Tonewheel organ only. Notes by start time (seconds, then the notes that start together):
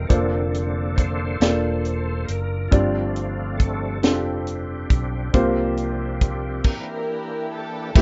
Already playing: A#4
0.07 D3 A#3 C4 D4 A4
0.96 A4 C5
2.25 A#4
2.68 F3 A3 C4 D4 F4
3.58 A4
4.02 C4 D4 G4
5.33 F3 A#3 D4
6.65 E3 A#3 D4
7.96 G4 C5 E5 A5